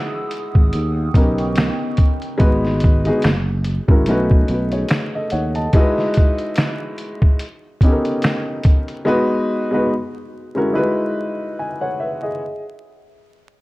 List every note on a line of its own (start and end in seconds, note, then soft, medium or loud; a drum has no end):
0.00 0.57 G#3 loud
0.00 0.57 D#4 medium
0.00 0.58 E4 medium
0.00 0.58 F#4 medium
0.00 0.72 G#4 medium
0.00 0.58 B4 loud
0.00 0.72 F#5 medium
0.00 2.37 D#6 medium
0.00 0.72 E6 medium
0.31 closed hi-hat medium
0.55 0.70 G#1 medium
0.55 kick medium
0.73 1.08 D#2 medium
0.73 2.39 B3 medium
0.73 2.38 G5 medium
0.73 2.39 C#6 medium
0.73 closed hi-hat medium
1.14 1.69 B1 medium
1.14 2.28 B3 medium
1.14 2.28 C#4 medium
1.14 2.29 D#4 medium
1.14 2.29 G4 medium
1.14 2.29 A#4 medium
1.14 kick medium
1.14 closed hi-hat medium
1.38 closed hi-hat soft
1.55 finger snap medium
1.55 snare loud
1.55 closed hi-hat medium
1.97 kick medium
1.97 closed hi-hat medium
2.22 closed hi-hat soft
2.38 3.09 G#1 loud
2.38 2.96 G#3 loud
2.38 2.97 B3 medium
2.38 2.97 D#4 medium
2.38 2.98 F#4 medium
2.38 2.98 B4 loud
2.38 kick loud
2.38 closed hi-hat medium
2.65 snare soft
2.80 kick medium
2.80 closed hi-hat medium
3.05 3.23 G#3 medium
3.05 3.24 B3 medium
3.05 3.24 D#4 medium
3.05 3.24 F#4 medium
3.05 3.25 G#4 loud
3.05 closed hi-hat soft
3.22 3.78 F#1 medium
3.22 finger snap medium
3.22 snare loud
3.22 closed hi-hat medium
3.64 closed hi-hat medium
3.88 4.04 G#1 medium
3.88 4.06 G#3 medium
3.88 4.07 C#4 medium
3.88 4.07 E4 medium
3.88 4.08 F#4 medium
3.88 4.08 A#4 medium
3.88 kick medium
4.06 4.41 B1 medium
4.06 5.58 A3 medium
4.06 5.58 C#4 medium
4.06 5.59 D#4 medium
4.06 4.50 F#4 medium
4.06 closed hi-hat medium
4.11 4.49 B4 medium
4.31 kick medium
4.48 4.83 B1 medium
4.48 4.72 F#4 soft
4.48 4.72 B4 medium
4.48 closed hi-hat soft
4.72 5.12 G#4 medium
4.72 5.12 C#5 medium
4.72 closed hi-hat soft
4.88 finger snap medium
4.88 snare loud
4.88 closed hi-hat medium
5.15 5.32 A4 medium
5.15 5.32 D#5 medium
5.30 5.67 D#2 medium
5.30 5.55 C#5 medium
5.30 5.54 F#5 medium
5.30 closed hi-hat medium
5.55 5.95 D#5 medium
5.55 5.95 A5 medium
5.55 closed hi-hat soft
5.73 7.25 G#3 loud
5.73 7.25 D#4 loud
5.73 7.25 E4 loud
5.73 7.26 F#4 loud
5.73 kick loud
5.73 closed hi-hat medium
5.77 7.26 B4 loud
5.98 snare soft
6.14 kick medium
6.14 closed hi-hat medium
6.38 closed hi-hat soft
6.56 finger snap medium
6.56 snare loud
6.56 closed hi-hat medium
6.98 closed hi-hat medium
7.22 kick medium
7.39 closed hi-hat medium
7.81 8.95 B3 medium
7.81 8.96 C#4 medium
7.81 8.96 D#4 medium
7.81 kick medium
7.81 closed hi-hat medium
7.85 8.97 G4 medium
7.85 7.91 A4 medium
7.92 9.00 A#4 medium
8.05 closed hi-hat soft
8.22 finger snap loud
8.22 snare loud
8.22 closed hi-hat medium
8.63 kick loud
8.63 closed hi-hat medium
8.88 closed hi-hat soft
9.05 9.63 G#3 loud
9.05 9.64 B3 medium
9.05 9.64 D#4 loud
9.05 9.64 F#4 loud
9.05 9.65 B4 loud
9.71 9.90 G#3 medium
9.71 9.90 B3 medium
9.71 9.90 D#4 medium
9.71 9.91 F#4 medium
9.71 9.91 B4 medium
10.55 10.73 G#3 medium
10.55 10.74 C#4 medium
10.55 10.72 E4 medium
10.55 10.73 F#4 medium
10.55 10.75 A#4 medium
10.73 10.80 G3 medium
10.73 12.24 D#4 medium
10.73 12.24 E4 medium
10.73 12.25 F#4 medium
10.73 11.16 B4 loud
10.79 12.27 G#3 medium
11.59 11.81 D#5 medium
11.59 11.80 G#5 medium
11.81 11.98 C#5 medium
11.81 11.98 F#5 medium
12.00 12.22 B4 medium
12.00 12.21 E5 medium
12.22 12.62 G#4 medium
12.22 12.62 D#5 medium